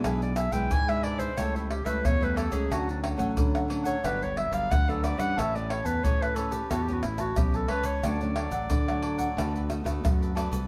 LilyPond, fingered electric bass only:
\new Staff \with { instrumentName = "Fingered electric bass" } { \clef bass \time 4/4 \key d \major \tempo 4 = 90 b,,8. b,,16 gis,4 cis,8. cis,16 e,8. cis,16 | d,8. a,,16 d4 g,,8. g,,16 d,8. g,16 | a,,8. e,16 a,4 e,8 a,,8 b,,8 cis,8 | d,8. a,,16 d4 d,8. d,16 fis,8. c,16 | }